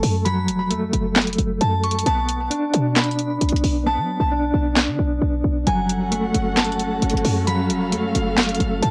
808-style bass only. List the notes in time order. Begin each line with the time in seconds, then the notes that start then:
0.03 F#2
0.48 F1
0.71 F#2
0.93 F#1
1.38 F#1
1.61 F#2
2.06 B1
2.74 B2
3.41 B1
3.52 B1
3.64 B1
3.98 F#3
4.20 B1
4.54 B1
4.88 D3
4.99 B1
5.22 B1
5.44 B1
5.67 F#1
6.34 F#1
7.02 F#1
7.13 F#1
7.25 F#2
7.70 F1
7.92 F#2
8.15 F#1
8.60 F#1
8.83 F#2